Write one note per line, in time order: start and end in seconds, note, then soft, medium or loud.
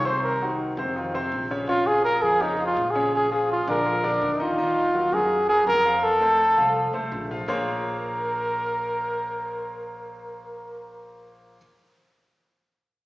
0.00 0.71 C2 medium
0.05 0.34 C3 medium
0.05 0.34 C4 medium
0.05 0.35 C5 medium
0.05 0.23 C5 medium
0.24 0.57 A#4 medium
0.41 0.71 D#3 medium
0.41 0.71 D#4 medium
0.41 0.71 F#4 medium
0.77 1.28 F2 medium
0.77 0.93 C3 medium
0.77 0.93 C4 medium
0.77 0.93 C5 medium
0.96 1.10 D#3 medium
0.96 1.10 D#4 medium
0.96 1.11 F4 medium
1.14 1.44 C3 medium
1.14 1.44 C4 medium
1.14 1.44 C5 medium
1.32 2.17 A#1 medium
1.51 1.65 C#3 medium
1.51 1.66 C#4 medium
1.51 1.66 C#5 medium
1.69 1.83 C#3 medium
1.69 1.83 C#4 medium
1.69 1.88 F4 medium
1.69 1.84 C#5 medium
1.87 2.16 F3 medium
1.87 2.16 F4 medium
1.87 2.04 G#4 loud
1.87 2.17 G#4 medium
2.05 2.24 A#4 loud
2.22 2.73 F2 medium
2.22 2.38 F3 medium
2.22 2.38 F4 medium
2.22 2.44 G#4 loud
2.22 2.38 G#4 medium
2.41 2.56 C#3 medium
2.41 2.56 C#4 medium
2.41 2.66 D#4 medium
2.41 2.56 C#5 medium
2.60 2.89 F3 medium
2.60 2.89 F4 medium
2.60 2.90 G#4 medium
2.67 2.92 F4 medium
2.76 3.62 A#1 medium
2.91 3.14 G#4 medium
2.95 3.25 C#3 medium
2.95 3.25 C#4 medium
2.95 3.25 C#5 medium
3.16 3.31 G#4 medium
3.31 3.61 F3 medium
3.31 3.61 F4 medium
3.31 3.62 G#4 medium
3.31 3.49 G#4 medium
3.52 3.68 F4 medium
3.67 4.18 A#1 medium
3.67 3.83 D3 medium
3.67 3.83 D4 medium
3.67 4.31 A#4 medium
3.67 3.83 D5 medium
3.85 4.00 F3 medium
3.85 4.01 F4 medium
3.85 4.01 G#4 medium
4.03 4.34 D3 medium
4.03 4.34 D4 medium
4.03 4.34 D5 medium
4.21 5.07 D#2 medium
4.35 4.43 D#4 medium
4.40 4.55 D#3 medium
4.40 4.55 D#4 medium
4.40 5.15 F4 medium
4.40 4.55 D#5 medium
4.58 4.88 D#3 medium
4.58 4.88 D#4 medium
4.58 4.88 D#5 medium
4.94 5.09 F#3 medium
4.94 5.10 F#4 medium
4.94 5.10 A#4 medium
5.12 5.63 F#2 medium
5.12 5.42 F#3 medium
5.12 5.42 F#4 medium
5.12 5.49 G#4 loud
5.12 5.42 A#4 medium
5.49 5.79 F#3 medium
5.49 5.79 F#4 medium
5.49 5.66 G#4 medium
5.49 5.79 A#4 medium
5.66 6.52 F2 medium
5.66 6.05 A#4 loud
5.85 6.15 F3 medium
5.85 6.15 F4 medium
5.85 6.15 F5 medium
6.03 7.12 A4 loud
6.21 6.51 A3 medium
6.21 6.51 A4 medium
6.21 6.51 C5 medium
6.57 6.92 C2 medium
6.57 6.87 F3 medium
6.57 6.87 F4 medium
6.57 6.88 F5 medium
6.93 7.11 C2 medium
6.93 7.23 A3 medium
6.93 7.24 A4 medium
6.93 7.24 C5 medium
7.12 7.44 A#1 medium
7.31 7.45 F3 medium
7.31 7.46 F4 medium
7.31 7.46 F5 medium
7.48 11.56 A#1 medium
7.48 11.56 A#3 medium
7.48 11.56 F4 medium
7.48 11.57 G#4 medium
7.48 11.57 A#4 medium
7.48 11.16 A#4 medium
7.48 11.57 C5 medium
7.48 11.57 C#5 medium